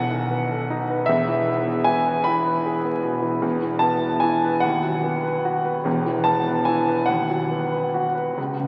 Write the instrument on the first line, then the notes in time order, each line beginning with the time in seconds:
grand piano
Already playing: B1 F#5
0.11 D#3
0.31 B3
0.52 A4
0.70 D#4
0.90 B4
1.06 E1 E2 E5
1.28 E3
1.48 B3
1.68 G#4
1.84 E4 G#5
2.07 B4
2.24 E4 B5
2.46 B4
2.66 G#4
2.85 B3
3.04 B2
3.22 E3
3.41 E1 E2
3.62 E3
3.79 B3 A5
4.03 B4
4.20 E4 G#5
4.44 B4
4.60 D#2 F#5
4.83 F#3
5.03 B3
5.24 B4
5.45 F#4
5.65 B4
5.84 E1 E2
6.06 E3
6.24 B3 A5
6.47 B4
6.65 E4 G#5
6.88 B4
7.06 D#2 F#5
7.30 F#3
7.51 B3
7.72 B4
7.94 F#4
8.15 B4
8.38 C#2
8.59 C#3